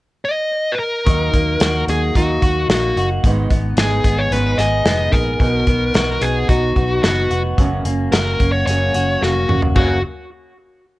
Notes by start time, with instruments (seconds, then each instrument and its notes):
0.25 lead electric guitar D#5
0.72 lead electric guitar B4
0.79 lead electric guitar A#4
1.05 fingered electric bass D#2, steel-string acoustic guitar D#3 F#3 A#3 D#4, kick, closed hi-hat
1.33 fingered electric bass D#2, steel-string acoustic guitar A#3 D#4, kick, closed hi-hat
1.37 steel-string acoustic guitar F#3
1.60 fingered electric bass D#2, steel-string acoustic guitar D#3 F#3 A#3 D#4, clean electric guitar F#4, snare, closed hi-hat
1.87 fingered electric bass D#2, steel-string acoustic guitar F#3 A#3 D#4, lead electric guitar G#4, closed hi-hat
2.15 fingered electric bass D#2, steel-string acoustic guitar D#3 F#3 A#3 D#4, lead electric guitar F#4, kick, closed hi-hat
2.42 fingered electric bass D#2, steel-string acoustic guitar A#3 D#4, clean electric guitar F#4, kick, closed hi-hat
2.46 steel-string acoustic guitar F#3
2.68 fingered electric bass A#1, steel-string acoustic guitar D#3 F#3, lead electric guitar F#4, snare, closed hi-hat
2.73 steel-string acoustic guitar A#3 D#4
2.96 fingered electric bass F#1, steel-string acoustic guitar A#3 D#4, clean electric guitar F#4, closed hi-hat
3.01 steel-string acoustic guitar F#3
3.24 fingered electric bass G#1, steel-string acoustic guitar G#2 D#3 G#3 B3 D#4, kick, closed hi-hat
3.50 fingered electric bass G#1, steel-string acoustic guitar B3 D#4, kick, closed hi-hat
3.55 steel-string acoustic guitar G#3
3.77 fingered electric bass G#1, steel-string acoustic guitar D#3 G#3, clean electric guitar G#4, lead electric guitar G#4, snare, closed hi-hat
3.81 steel-string acoustic guitar B3 D#4
4.04 fingered electric bass G#1, steel-string acoustic guitar B3 D#4, kick, closed hi-hat
4.09 steel-string acoustic guitar G#3
4.19 lead electric guitar C#5
4.31 fingered electric bass G#1, steel-string acoustic guitar G#2 D#3 G#3 B3 D#4, clean electric guitar C#4, lead electric guitar B4, closed hi-hat
4.46 clean electric guitar D#4
4.57 fingered electric bass G#1, steel-string acoustic guitar G#3 B3 D#4, clean electric guitar G#4, lead electric guitar D#5, snare, closed hi-hat
4.84 fingered electric bass F1, steel-string acoustic guitar D#3 G#3 B3 D#4, snare, closed hi-hat
5.11 fingered electric bass A#1, steel-string acoustic guitar G#3 B3 D#4, clean electric guitar G#4, lead electric guitar A#4, kick, closed hi-hat
5.39 fingered electric bass B1, steel-string acoustic guitar B2 F#3 B3 D#4, kick, closed hi-hat
5.67 fingered electric bass B1, steel-string acoustic guitar F#3 B3 D#4, kick, closed hi-hat
5.93 fingered electric bass B1, steel-string acoustic guitar B2 F#3 B3 D#4, clean electric guitar F#4, snare, closed hi-hat
6.21 fingered electric bass B1, steel-string acoustic guitar F#3 B3 D#4, lead electric guitar G#4, closed hi-hat
6.47 fingered electric bass B1, steel-string acoustic guitar B2 F#3 B3 D#4, lead electric guitar F#4, kick, closed hi-hat
6.76 fingered electric bass B1, steel-string acoustic guitar F#3 B3 D#4, clean electric guitar F#4, kick, closed hi-hat
7.03 fingered electric bass F#1, steel-string acoustic guitar B2 F#3 B3 D#4, lead electric guitar F#4, snare, closed hi-hat
7.30 fingered electric bass F1, steel-string acoustic guitar B3 D#4, clean electric guitar F#4, closed hi-hat
7.35 steel-string acoustic guitar F#3
7.58 fingered electric bass F#1, steel-string acoustic guitar F#2 C#3 F#3 A#3 C#4, kick, closed hi-hat
7.85 fingered electric bass F#1, steel-string acoustic guitar A#3 C#4, closed hi-hat
7.89 steel-string acoustic guitar F#3
8.12 fingered electric bass F#1, steel-string acoustic guitar C#3 F#3 A#3 C#4, clean electric guitar F#4, lead electric guitar A#4, snare, closed hi-hat
8.40 fingered electric bass F#1, steel-string acoustic guitar F#3 A#3 C#4, kick, closed hi-hat
8.52 lead electric guitar C#5
8.66 fingered electric bass F#1, steel-string acoustic guitar F#2 C#3 F#3 A#3 C#4, lead electric guitar C#5, closed hi-hat
8.94 fingered electric bass F#1, steel-string acoustic guitar F#3 A#3 C#4, clean electric guitar F#4, closed hi-hat
9.21 fingered electric bass F1, steel-string acoustic guitar C#3 F#3 A#3 C#4, lead electric guitar F#4, snare
9.49 fingered electric bass F1, steel-string acoustic guitar F#3 A#3 C#4, clean electric guitar F#4, mid tom
9.62 floor tom
9.76 fingered electric bass F#1, steel-string acoustic guitar F#2 C#3 F#3 A#3 C#4, lead electric guitar F#4, clean electric guitar F#4, kick, crash